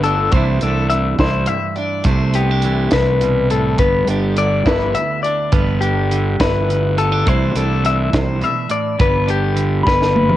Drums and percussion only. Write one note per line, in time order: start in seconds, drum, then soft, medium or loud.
0.03 closed hi-hat medium
0.31 kick loud
0.31 closed hi-hat medium
0.61 closed hi-hat medium
0.90 closed hi-hat medium
1.19 kick medium
1.19 snare loud
1.19 closed hi-hat medium
1.46 closed hi-hat medium
1.76 closed hi-hat medium
2.04 kick medium
2.04 closed hi-hat medium
2.34 closed hi-hat medium
2.62 closed hi-hat medium
2.91 kick medium
2.91 snare loud
2.91 closed hi-hat medium
3.21 closed hi-hat medium
3.50 closed hi-hat medium
3.78 kick loud
3.78 closed hi-hat medium
4.07 closed hi-hat medium
4.36 closed hi-hat medium
4.66 kick medium
4.66 snare loud
4.66 closed hi-hat medium
4.95 closed hi-hat medium
5.24 closed hi-hat medium
5.52 kick loud
5.52 closed hi-hat medium
5.82 closed hi-hat medium
6.11 closed hi-hat soft
6.40 kick medium
6.40 snare loud
6.40 closed hi-hat medium
6.70 closed hi-hat medium
6.98 closed hi-hat medium
7.27 kick medium
7.27 closed hi-hat medium
7.56 closed hi-hat medium
7.85 closed hi-hat medium
8.13 kick medium
8.13 snare loud
8.13 closed hi-hat medium
8.41 closed hi-hat medium
8.70 closed hi-hat medium
9.00 kick loud
9.00 closed hi-hat medium
9.28 closed hi-hat medium
9.57 closed hi-hat medium
9.87 kick medium
9.87 snare medium
10.02 snare soft
10.16 high tom medium
10.29 mid tom medium